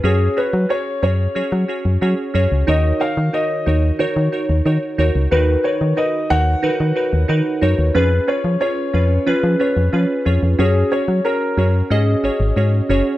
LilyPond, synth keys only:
\new Staff \with { instrumentName = "Synth keys" } { \time 4/4 \key ges \major \tempo 4 = 91 << { <des' ges' aes' des''>8 <des' ges' aes' des''>8 <des' ges' aes' des''>8 <des' ges' aes' des''>8 <des' ges' aes' des''>8 <des' ges' aes' des''>8 <des' ges' aes' des''>8 <des' ges' aes' des''>8 | <ees' ges' bes' des''>8 <ees' ges' bes' des''>8 <ees' ges' bes' des''>8 <ees' ges' bes' des''>8 <ees' ges' bes' des''>8 <ees' ges' bes' des''>8 <ees' ges' bes' des''>8 <ees' ges' bes' des''>8 | <dis' fis' ais' b'>8 <dis' fis' ais' b'>8 <dis' fis' ais' b'>8 <dis' fis' ais' des''>8 <dis' fis' ais' b'>8 <dis' fis' ais' b'>8 <dis' fis' ais' b'>8 <dis' fis' ais' des''>8 | <des' f' aes' ces''>8 <des' f' aes' ces''>8 <des' f' aes' des''>8 <des' f' aes' ces''>8 <des' f' aes' ces''>8 <des' f' aes' des''>8 <des' f' aes' ces''>8 <des' f' aes' des''>8 |
<des' ges' aes' des''>8 <des' ges' aes' des''>8 <des' ges' aes' des''>8 <des' ges' aes' des''>8 <des' ges' aes' ees''>8 <des' ges' aes' des''>8 <des' ges' aes' des''>8 <des' ges' aes' des''>8 | } \\ { r1 | ees4. r2 r8 | dis4. r2 r8 | r1 |
r1 | } >> }